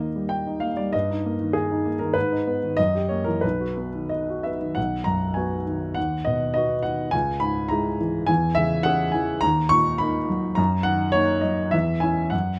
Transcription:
Already playing: D#2 D#4 D#5
0.00 A#3
0.16 G3
0.29 G5
0.47 D#4
0.60 A#3 F5
0.77 G3 D5
0.93 G2 D#5
1.10 D#4
1.26 A#3
1.41 D#3
1.53 G#4
1.71 D#4
1.85 A#3
1.99 D#3 A#4
2.14 G#2 B4
2.32 D#4
2.47 B3
2.63 D#3
2.77 F#2 D#5
2.95 G4
3.09 A#3 C#5
3.24 E3 A#4
3.41 B1 B4
3.60 F#4
3.77 B3
3.95 D#3
4.09 D#5
4.30 F#4
4.43 B3 E5
4.62 D#3
4.75 B1 F#5
5.04 F#2 A#5
5.34 B3 F#4 G#5
5.67 D#3
5.94 D#2 F#5
6.25 B2 D#5
6.54 B3 F#4 D#5
6.83 D#3 F#5
7.11 C#2 G#5
7.40 G#2 B5
7.68 G#3 E4 A#5
8.01 E3
8.27 E2 G#5
8.55 C#3 E5
8.83 C#4 G#4 F#5
9.12 E3 G#5
9.41 D#2 A#5
9.69 A#2 C#6
9.98 A#3 D#4 B5
10.30 F#3
10.55 F#2 A#5
10.83 D#3 F#5
11.12 A#3 D#4 C#5
11.41 F#3 D#5
11.71 E2 E5
12.00 C#4 E4 G#5
12.30 F#2 F#5

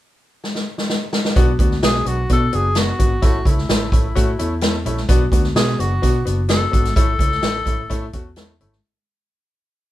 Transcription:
0.44 snare
0.55 snare
0.78 snare
0.90 snare
1.13 snare
1.25 snare
1.36 B1 B3 D4 F#4, kick, closed hi-hat
1.59 D2 B3 D4 F#4, kick, closed hi-hat
1.71 snare
1.83 B1 B3 D4 F#4 G#4, snare, closed hi-hat
1.94 snare
2.06 B1 B3 D4 F#4, closed hi-hat
2.29 B2 B3 D4 F#4 A4, kick, closed hi-hat
2.53 F#1 B3 D4 F#4 G#4, closed hi-hat
2.75 B3 D4 F#4, snare, closed hi-hat
2.99 G#1 B3 D4 F#4, kick, closed hi-hat
3.22 A1 A3 C#4 E4 F#4, kick, closed hi-hat
3.45 C#2 A3 C#4 E4, kick, closed hi-hat
3.58 snare
3.69 A1 A3 C#4 E4, snare, closed hi-hat
3.92 A1 A3 C#4 E4, kick, closed hi-hat
4.15 A2 A3 C#4 F#4, kick, closed hi-hat
4.39 E2 A3 C#4 E4, closed hi-hat
4.61 A3 C#4 E4, snare, closed hi-hat
4.86 A#1 A3 C#4 E4, closed hi-hat
4.97 snare
5.09 B1 B3 D4 F#4, kick, closed hi-hat
5.32 D2 B3 D4 F#4, kick, closed hi-hat
5.44 snare
5.55 B2 B3 D4 F#4 G#4, snare, closed hi-hat
5.67 snare
5.79 F#1 B3 D4 F#4, closed hi-hat
6.02 B2 B3 D4 F#4, kick, closed hi-hat
6.25 F#1 B3 D4 F#4, closed hi-hat
6.49 B3 D4 F#4 A4, snare, closed hi-hat
6.72 G#1 B3 D4 F#4, kick, closed hi-hat
6.85 snare, closed hi-hat
6.96 A1 A3 C#4 E4 A4, kick, closed hi-hat
7.19 C#2 A3 C#4 E4, kick, closed hi-hat
7.31 snare
7.43 A1 A3 C#4 E4, snare, closed hi-hat
7.66 A1 A3 C#4 E4, kick, closed hi-hat
7.90 A2 A3 C#4 E4, kick, closed hi-hat
8.13 E2 A3 C#4 F#4, kick, closed hi-hat
8.36 A3 C#4 E4, snare, closed hi-hat
8.60 G#1 A3 C#4 E4, closed hi-hat
8.72 snare

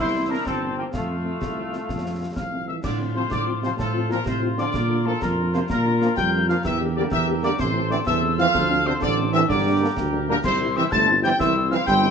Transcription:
0.00 C2 E4 C5 C6
0.14 E3 A#3 C4
0.29 E3 A#3 C4 D4 A#4 A#5
0.45 G1 C4 A4 A5, concert bass drum, snare
0.62 E3 A#3 C4
0.77 E3 A#3 C4 G4 G5
0.93 F2 A3 F4 F5, concert bass drum, snare
1.09 F3 A3 C4
1.24 F3 A3 C4
1.41 C2, concert bass drum, snare
1.56 F3 A3 C4
1.72 F3 A3 C4, snare
1.88 F2, concert bass drum, snare
2.04 F3 A3 C4
2.19 F3 A3 C4
2.36 C2 F3 F5 F6, concert bass drum, snare
2.51 F3 A3 C4
2.67 E3 F3 A3 C4 E5 E6
2.83 A2 D3 F4 C5 D5 D6, concert bass drum, snare, crash
3.00 F3 C4 F4
3.14 C3 F3 C4 F4 C5 C6
3.29 A2 D3 D5 D6, concert bass drum, snare
3.46 F3 C4 F4
3.62 C3 F3 C4 F4 C5 C6, snare
3.76 A2 F4 A4 C5 A5, concert bass drum, snare
3.94 F3 C4 F4
4.09 A#2 F3 C4 F4 A#4 A#5, snare
4.25 A2 C3 F4 C5 C6, concert bass drum, snare
4.42 F3 C4 F4
4.57 D3 F3 C4 F4 D5 D6, snare
4.74 A#2 F4 A#4, concert bass drum, snare
4.90 A#3 D4 F4
5.05 A2 F3 A#3 D4 F4 A4 A5
5.21 F2 A#2 F4 A#4 A#5, concert bass drum, snare
5.37 A#3 D4 F4
5.53 C3 F3 A#3 D4 F4 C5 C6, snare
5.69 A#2 F4 A#4 A#5, concert bass drum, snare
5.85 A#3 D4 F4
6.01 F3 A#3 D4 F4, snare
6.16 F2 G3 G5 G6, concert bass drum, snare
6.33 A#3 D4 F4
6.48 F3 A#3 D4 F4 F5 F6, snare
6.64 E2 E3 G4 A#4 E5 E6, concert bass drum, snare, crash
6.80 A#3 D4 G4
6.96 D3 G3 A#3 D4 G4 D5 D6
7.11 E2 E3 G4 A#4 E5 E6, concert bass drum, snare
7.27 A#3 D4 G4
7.42 D3 G3 A#3 D4 G4 D5 D6, snare
7.58 A1 C3 A4 C5 C6, concert bass drum, snare
7.75 A3 C4 E4
7.90 D3 E3 A3 C4 E4 D5 D6, snare
8.07 E2 E3 A4 C5 E5 E6, concert bass drum, snare
8.22 A3 C4 E4
8.38 E3 F3 A3 C4 E4 F5 F6, snare
8.54 D2 A4 C5, concert bass drum, snare
8.70 A3 C4 D4
8.85 C3 D3 A3 C4 D4 C5 C6
9.00 A1 D3 A4 C5 D5 D6, concert bass drum, snare
9.18 A3 C4 D4
9.32 D3 E3 A3 C4 D4 E5 E6, snare
9.48 G2 D3 G4 A#4 D5 D6, concert bass drum, snare
9.65 G3 A#3 D4
9.80 D3 G3 A#3 D4
9.97 D2, concert bass drum, snare
10.13 G3 A#3 D4
10.27 A#2 D3 G3 A#3 D4 A#4 A#5
10.44 C2 C3 E4 C5 C6, concert bass drum, snare, crash
10.60 G3 C4 E4
10.75 E3 G3 C4 E4 E5 E6
10.92 G1 A3 A5 A6, concert bass drum, snare
11.07 G3 C4 E4
11.23 E3 G3 C4 E4 G5 G6, snare
11.39 C2 E3 E4 C5 E5 E6, concert bass drum, snare
11.54 G3 C4 E4
11.70 E3 F3 G3 C4 E4 F5 F6, snare
11.86 G1 G3 E4 C5 G5 G6, concert bass drum, snare
12.02 G3 C4 E4

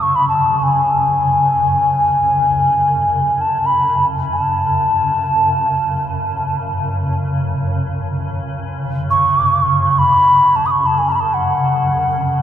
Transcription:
Already playing: F#2 C#3
0.02 C#6
0.15 B5
0.29 A5
0.63 G#5
1.03 F#2 C#3
3.41 A5
3.66 B5
4.32 A5
9.10 C#6
9.91 C#6
9.99 B5
10.56 A5
10.66 D#6
10.71 C#6
10.86 A5
10.98 G#5
11.09 A5 B5
11.14 B5
11.20 A5
11.34 F#5

